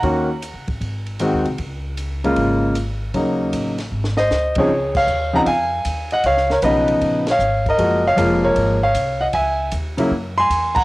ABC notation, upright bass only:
X:1
M:4/4
L:1/8
Q:"Swing" 1/4=155
K:Db
V:1 name="Upright bass" clef=bass
E,,2- (3E,, D,, =A,,, _A,,,2- (3A,,, E,, C,, | D,,4 A,,,4 | E,,2 =A,,,2 _A,,,2 =D,,2 | D,,2 E,,2 F,,2 E,,2 |
D,,2 _C,,2 B,,,2 A,,,2 | G,,,2 F,,,2 A,,,2 C,,2 | D,,2 E,,2 G,,2 =E,,2 |]